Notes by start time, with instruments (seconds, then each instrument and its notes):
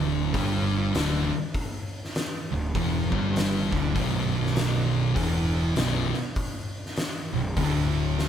Already playing: picked electric bass D1, distorted electric guitar D2 D3
0.34 picked electric bass G1, distorted electric guitar G2 G3, kick, open hi-hat
0.94 picked electric bass D1, distorted electric guitar D2 D3, snare, open hi-hat
1.54 kick, open hi-hat
2.05 snare
2.15 snare, open hi-hat
2.52 picked electric bass D1, distorted electric guitar D2
2.75 picked electric bass E1, distorted electric guitar E2 E3, kick, open hi-hat
3.12 picked electric bass G1, distorted electric guitar G2 G3, kick
3.36 snare, open hi-hat
3.72 picked electric bass D1, distorted electric guitar D2 D3, kick, snare
3.95 picked electric bass B0, distorted electric guitar B1 B2, kick, open hi-hat
4.46 snare
4.56 snare, open hi-hat
5.16 picked electric bass E1, distorted electric guitar E2 E3, kick, open hi-hat
5.76 picked electric bass B0, distorted electric guitar B1 B2, snare, open hi-hat
6.14 snare
6.36 kick, open hi-hat
6.86 snare
6.96 snare, open hi-hat
7.33 picked electric bass B0, distorted electric guitar B1
7.57 picked electric bass D1, distorted electric guitar D2 D3, kick, open hi-hat
8.19 snare